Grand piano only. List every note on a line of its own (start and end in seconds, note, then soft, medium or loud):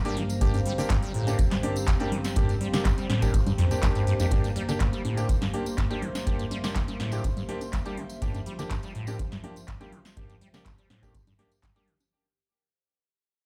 0.05 0.14 A#3 medium
0.05 0.14 D4 medium
0.05 0.14 G4 loud
0.41 0.56 A#3 medium
0.41 0.56 D4 medium
0.41 0.56 G4 medium
0.78 0.87 A#3 loud
0.78 0.87 D4 medium
0.78 0.87 G4 loud
1.27 1.36 A#3 medium
1.27 1.36 D4 medium
1.27 1.36 G4 loud
1.63 1.73 A#3 loud
1.63 1.73 D4 medium
1.63 1.73 G4 loud
2.00 2.09 A#3 loud
2.00 2.09 D4 medium
2.00 2.09 G4 loud
2.36 2.51 A#3 medium
2.36 2.51 D4 medium
2.36 2.51 G4 medium
2.74 2.82 A#3 medium
2.74 2.82 D4 medium
2.74 2.82 G4 loud
3.22 3.31 A#3 medium
3.22 3.31 D4 medium
3.22 3.31 G4 loud
3.71 4.17 A#3 medium
3.71 4.17 D4 medium
3.71 4.17 G4 loud
4.20 4.30 A#3 medium
4.20 4.30 D4 medium
4.20 4.30 G4 medium
4.32 4.46 A#3 medium
4.32 4.46 D4 medium
4.32 4.46 G4 medium
4.68 4.77 A#3 medium
4.68 4.77 D4 medium
4.68 4.77 G4 loud
5.17 5.26 A#3 medium
5.17 5.26 D4 medium
5.17 5.26 G4 loud
5.54 5.63 A#3 medium
5.54 5.63 D4 medium
5.54 5.63 G4 loud
5.91 5.99 A#3 loud
5.91 5.99 D4 medium
5.91 5.99 G4 loud
6.27 6.42 A#3 medium
6.27 6.41 D4 medium
6.27 6.42 G4 medium
6.64 6.72 A#3 medium
6.64 6.72 D4 medium
6.64 6.72 G4 loud
7.13 7.21 A#3 medium
7.13 7.21 D4 medium
7.13 7.21 G4 loud
7.49 7.58 A#3 loud
7.49 7.58 D4 medium
7.49 7.58 G4 loud
7.86 7.94 A#3 loud
7.86 7.94 D4 medium
7.86 7.94 G4 loud
8.22 8.37 A#3 medium
8.22 8.37 D4 medium
8.22 8.37 G4 medium
8.59 8.68 A#3 medium
8.59 8.68 D4 medium
8.59 8.68 G4 loud
9.08 9.16 A#3 medium
9.08 9.16 D4 medium
9.08 9.16 G4 loud
9.44 9.53 A#3 loud
9.44 9.53 D4 medium
9.44 9.53 G4 loud
9.81 9.89 A#3 loud
9.81 9.89 D4 medium
9.81 9.89 G4 loud
10.17 10.32 A#3 medium
10.17 10.32 D4 medium
10.17 10.32 G4 medium
10.54 10.63 A#3 medium
10.54 10.63 D4 medium
10.54 10.63 G4 loud
11.03 11.11 A#3 loud
11.03 11.11 D4 medium
11.03 11.11 G4 loud
11.39 11.48 A#3 loud
11.39 11.48 D4 medium
11.39 11.48 G4 loud
11.76 11.85 A#3 loud
11.76 11.85 D4 medium
11.76 11.85 G4 loud